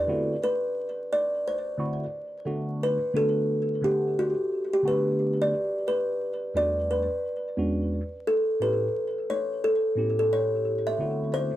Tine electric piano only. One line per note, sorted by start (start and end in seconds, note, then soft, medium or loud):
0.07 0.34 D3 medium
0.07 0.34 A3 medium
0.07 0.34 B3 medium
0.07 0.35 C4 medium
0.07 0.35 E4 medium
0.07 0.35 F#4 medium
1.77 2.04 D3 medium
1.77 2.05 A3 medium
1.77 2.05 C4 medium
1.77 2.05 E4 medium
1.77 2.05 F#4 medium
2.45 2.97 D3 medium
2.45 2.97 A3 medium
2.45 2.97 B3 medium
2.45 2.97 D4 medium
2.45 2.98 F#4 medium
3.13 3.80 D3 medium
3.13 3.81 A3 medium
3.13 3.81 B3 medium
3.13 3.82 D4 medium
3.13 4.12 F#4 medium
3.81 4.33 D3 medium
3.81 4.33 A3 medium
3.81 4.34 B3 medium
3.81 4.34 D4 medium
3.81 4.34 F#5 medium
4.83 5.52 D3 medium
4.83 5.53 A3 medium
4.83 5.53 B3 medium
4.83 5.53 D4 medium
4.83 5.54 F#4 medium
6.54 7.06 E2 medium
6.54 7.06 G3 medium
6.54 7.06 A3 medium
6.54 7.06 B3 medium
6.54 7.07 D4 medium
6.54 7.07 F#4 medium
7.57 8.00 E2 medium
7.57 8.00 G#3 medium
7.57 8.00 B3 medium
7.57 8.00 C#4 medium
7.57 8.01 D4 medium
7.57 8.01 F#4 medium
8.60 8.86 A2 medium
8.60 8.86 B3 medium
8.60 8.87 C#4 medium
8.60 8.87 E4 soft
8.60 8.87 G4 medium
9.96 10.93 A2 medium
9.96 10.94 B3 medium
9.96 10.94 C#4 medium
9.96 10.94 E4 medium
9.96 10.95 G4 medium
10.98 11.49 D3 medium
10.98 11.50 A3 medium
10.98 11.50 B3 medium
10.98 11.50 C4 medium
10.98 11.50 E4 medium
10.98 11.51 F#4 medium